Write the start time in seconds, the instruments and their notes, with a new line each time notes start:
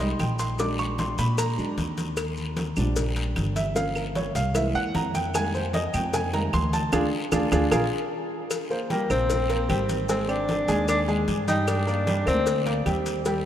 Already playing: upright bass C2
0.00 grand piano G3 G#3 D#4 D#5, cowbell, maracas
0.19 upright bass A#1, grand piano G5, cowbell, high conga, short guiro, claves, maracas
0.39 grand piano C6, cowbell, short guiro, maracas
0.59 grand piano F#3 G#3 D4 D6, cowbell, high conga, long guiro, maracas
0.79 grand piano C#6, high conga, claves, maracas
0.98 grand piano C6, cowbell, high conga, short guiro, maracas
1.18 upright bass A#2, grand piano B5, cowbell, high conga, short guiro, maracas
1.38 grand piano A#5, cowbell, high conga, long guiro, claves, maracas
1.58 upright bass E2, grand piano F#3 G#3 D4, high conga, maracas
1.78 upright bass D#2, cowbell, high conga, short guiro, maracas
1.98 cowbell, high conga, short guiro, maracas
2.17 cowbell, high conga, long guiro, claves, maracas
2.37 high conga, maracas
2.56 cowbell, high conga, short guiro, maracas
2.76 upright bass A#1, grand piano F3 G3 D4, high conga, low conga, short guiro, claves, maracas
2.96 cowbell, high conga, low conga, long guiro, maracas
3.16 cowbell, high conga, maracas
3.35 upright bass G1, cowbell, high conga, short guiro, claves, maracas
3.55 grand piano E5, cowbell, high conga, short guiro, maracas
3.75 grand piano F3 A#3 C#4 F5, cowbell, high conga, long guiro, maracas
3.96 grand piano A#4, high conga, claves, maracas
4.15 grand piano C#5, cowbell, high conga, short guiro, maracas
4.35 upright bass C2, grand piano F5, cowbell, high conga, short guiro, maracas
4.54 grand piano E3 G#3 A#3 E5, cowbell, high conga, long guiro, claves, maracas
4.75 upright bass D#2, grand piano F#5, high conga, maracas
4.95 upright bass F2, grand piano A#5, cowbell, high conga, short guiro, maracas
5.14 grand piano G5, cowbell, high conga, short guiro, maracas
5.34 grand piano D#3 G3 G#3 A#3 G#5, cowbell, high conga, long guiro, claves, maracas
5.53 grand piano C5, high conga, maracas
5.73 grand piano D#5, cowbell, high conga, short guiro, maracas
5.94 upright bass F2, grand piano G5, high conga, low conga, short guiro, claves, maracas
6.13 grand piano G#5, cowbell, high conga, low conga, long guiro, maracas
6.33 grand piano D#3 G3 G#3 A#3 A#5, cowbell, high conga, maracas
6.53 upright bass D2, grand piano C6, cowbell, high conga, short guiro, claves, maracas
6.73 grand piano A5, cowbell, high conga, short guiro, maracas
6.92 upright bass D2, grand piano D4 F4 G#4, cowbell, high conga, long guiro, claves, maracas
7.32 upright bass D2, grand piano D4 F4 G#4, cowbell, high conga, long guiro, claves, maracas
7.51 upright bass D2, grand piano D4 F4 G#4, cowbell, high conga, long guiro, claves, maracas
7.71 upright bass A#1, grand piano F4 G#4 A#4, cowbell, high conga, long guiro, claves, maracas
8.51 cowbell, high conga, long guiro, claves, maracas
8.70 grand piano A#3 A#4 C5, high conga, maracas
8.90 grand piano G3 G4 G5, tenor saxophone A#3, cowbell, high conga, short guiro, maracas
9.10 upright bass A#1, grand piano A#3 A#4 C5, tenor saxophone C4, high conga, low conga, short guiro, claves, maracas
9.30 cowbell, high conga, low conga, long guiro, maracas
9.49 grand piano A#3 A#4 C5, cowbell, high conga, maracas
9.69 upright bass G#1, grand piano G3 G4 G5, tenor saxophone C4, cowbell, high conga, short guiro, claves, maracas
9.89 cowbell, high conga, short guiro, maracas
10.09 grand piano G#3 G#4 G#5, tenor saxophone C4, cowbell, high conga, long guiro, maracas
10.28 grand piano C4 C5 D5, tenor saxophone D4, high conga, claves, maracas
10.48 cowbell, high conga, short guiro, maracas
10.68 upright bass D#2, grand piano G#3 G#4 G#5, cowbell, high conga, short guiro, maracas
10.88 tenor saxophone D4, cowbell, high conga, long guiro, claves, maracas
11.08 grand piano G#3 G#4 G#5, high conga, maracas
11.28 upright bass G2, cowbell, high conga, short guiro, maracas
11.48 grand piano G3 G4 G5, tenor saxophone D#4, cowbell, high conga, short guiro, maracas
11.67 tenor saxophone D4, cowbell, high conga, long guiro, claves, maracas
11.87 grand piano A#3 A#4 D5, high conga, maracas
12.06 grand piano G3 G4 G5, cowbell, high conga, short guiro, maracas
12.26 upright bass D2, grand piano A#3 A#4 D5, tenor saxophone C4, high conga, low conga, short guiro, claves, maracas
12.46 cowbell, high conga, long guiro, maracas
12.66 grand piano A#3 A#4 D5, cowbell, high conga, maracas
12.86 upright bass D#2, grand piano G3 G4 G5, cowbell, high conga, short guiro, claves, maracas
13.06 cowbell, short guiro, maracas
13.25 grand piano G3 G4 G5, cowbell, high conga, long guiro, maracas